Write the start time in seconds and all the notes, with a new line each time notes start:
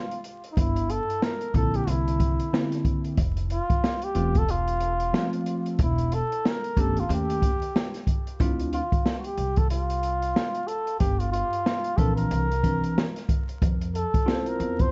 Already playing: F4
0.11 closed hi-hat
0.24 closed hi-hat
0.44 closed hi-hat
0.52 D#4
0.57 G1 E4, kick, closed hi-hat
0.76 closed hi-hat
0.90 A4, closed hi-hat
1.10 closed hi-hat
1.22 A#4, snare
1.41 closed hi-hat
1.54 A#1 D3 A#3 C4 E4 A4, kick, closed hi-hat
1.74 G4, closed hi-hat
1.87 C2 E4, closed hi-hat
2.08 closed hi-hat
2.20 kick, closed hi-hat
2.40 closed hi-hat
2.53 D3 A#3 C4 E4, snare
2.72 snare, closed hi-hat
2.85 kick, closed hi-hat
3.04 closed hi-hat
3.17 F1, kick, closed hi-hat
3.37 closed hi-hat
3.50 F4, closed hi-hat
3.70 kick, closed hi-hat
3.84 snare
4.02 G4, closed hi-hat
4.15 E1 E3 A3 C4 F4, closed hi-hat
4.35 A4, kick, closed hi-hat
4.49 F4, closed hi-hat
4.68 closed hi-hat
4.80 closed hi-hat
5.00 closed hi-hat
5.13 F3 G3 C4 F4, snare
5.21 A3
5.33 closed hi-hat
5.46 closed hi-hat
5.66 closed hi-hat
5.79 E1 E4, kick, closed hi-hat
5.98 closed hi-hat
6.12 A4, closed hi-hat
6.32 closed hi-hat
6.45 A#4, snare
6.64 closed hi-hat
6.77 G1 D#3 A3 C#4 G4 A4, kick, closed hi-hat
6.97 F4, closed hi-hat
7.09 D#2 D#3 A3 C#4 G4, closed hi-hat
7.13 G4
7.30 closed hi-hat
7.42 kick, closed hi-hat
7.62 closed hi-hat
7.76 snare
7.94 snare, closed hi-hat
8.07 kick, closed hi-hat
8.27 closed hi-hat
8.40 D2 C4 D4 E4 F4, kick, closed hi-hat
8.59 closed hi-hat
8.73 F4, closed hi-hat
8.92 kick, closed hi-hat
9.06 snare
9.19 F#4
9.24 G4, closed hi-hat
9.37 C2, closed hi-hat
9.56 A4, kick, closed hi-hat
9.70 F4, closed hi-hat
9.90 closed hi-hat
10.03 closed hi-hat
10.22 closed hi-hat
10.36 snare
10.55 closed hi-hat
10.67 A4, closed hi-hat
10.87 closed hi-hat
10.99 G1 G4, kick, closed hi-hat
11.19 F4, closed hi-hat
11.31 F4, closed hi-hat
11.53 closed hi-hat
11.66 snare
11.84 closed hi-hat
11.97 A#1 E3 C4 D4 A4 A#4, kick, closed hi-hat
12.16 A#4, closed hi-hat
12.31 C2, closed hi-hat
12.51 closed hi-hat
12.63 E3 C4 D4 A#4, kick, closed hi-hat
12.84 closed hi-hat
12.98 snare
13.16 snare, closed hi-hat
13.29 kick, closed hi-hat
13.49 closed hi-hat
13.62 F2, kick, closed hi-hat
13.81 closed hi-hat
13.95 A4, closed hi-hat
14.14 kick, closed hi-hat
14.26 C4 E4 F4 G4, snare
14.34 C5
14.46 A#4, closed hi-hat
14.60 E2, closed hi-hat
14.79 C5, kick, closed hi-hat